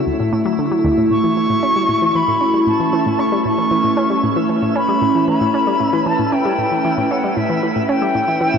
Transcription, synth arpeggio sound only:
0.06 0.10 D2 medium
0.20 0.29 A2 medium
0.33 0.36 A2 loud
0.45 0.52 F#3 loud
0.59 0.65 D3 medium
0.71 0.78 F#3 medium
0.84 0.88 D2 loud
0.98 1.04 A2 medium
1.11 1.15 A2 medium
1.24 1.34 E3 medium
1.37 1.43 E3 medium
1.50 1.54 A2 medium
1.63 1.69 C#4 medium
1.76 1.82 G3 medium
1.89 1.93 A2 medium
2.02 2.12 E3 medium
2.15 2.22 E3 medium
2.28 2.32 A2 medium
2.41 2.47 C#4 medium
2.54 2.61 G3 medium
2.67 2.71 A2 medium
2.80 2.90 E3 medium
2.93 3.00 E3 medium
3.06 3.10 A2 medium
3.19 3.26 C#4 medium
3.32 3.39 G3 medium
3.45 3.49 A2 medium
3.58 3.68 E3 medium
3.71 3.78 E3 medium
3.84 3.88 A2 medium
3.97 4.04 C#4 medium
4.10 4.17 G3 medium
4.23 4.28 A2 medium
4.36 4.46 E3 medium
4.49 4.56 E3 medium
4.62 4.67 A2 medium
4.76 4.82 C#4 medium
4.89 4.95 G3 medium
5.02 5.06 A2 medium
5.15 5.25 E3 medium
5.28 5.34 E3 medium
5.41 5.45 A2 medium
5.54 5.61 C#4 medium
5.67 5.74 G3 medium
5.80 5.84 A2 medium
5.93 6.03 E3 medium
6.06 6.13 E3 medium
6.19 6.23 A2 medium
6.32 6.39 C#4 medium
6.45 6.52 G3 medium
6.59 6.62 A2 medium
6.71 6.81 E3 medium
6.85 6.91 E3 medium
6.98 7.02 A2 medium
7.11 7.17 C#4 medium
7.24 7.30 G3 medium
7.37 7.41 A2 medium
7.50 7.60 E3 medium
7.63 7.69 E3 medium
7.76 7.80 A2 medium
7.89 7.95 C#4 medium
8.02 8.08 G3 medium
8.15 8.19 A2 medium
8.28 8.38 E3 medium
8.41 8.47 E3 medium
8.54 8.58 A2 medium

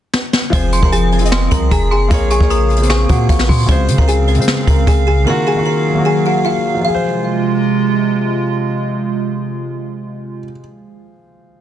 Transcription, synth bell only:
0.73 0.92 C6 loud
0.92 1.30 G#5 medium
1.32 1.69 C6 medium
1.71 1.90 A#5 medium
1.91 2.10 C6 medium
2.31 2.49 C#6 medium
2.50 2.87 D#6 medium
2.90 3.45 C#6 medium
3.49 3.68 C6 medium

